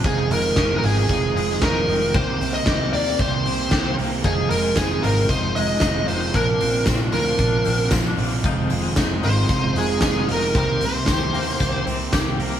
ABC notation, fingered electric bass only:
X:1
M:4/4
L:1/8
Q:1/4=114
K:Fdor
V:1 name="Fingered electric bass" clef=bass
z F,,, F,,, A,,, F,,, F,,, F,,, F,,, | C,, C,, C,, E,, C,, C,, C,, C,, | F,,, F,,, F,,, A,,, F,,, F,,, F,,, F,,, | B,,, B,,, B,,, D,, B,,, B,,, B,,, B,,, |
F,,, F,,, F,,, A,,, F,,, F,,, F,,, F,,, | C,, C,, C,, E,, C,, C,, C,, C,, |]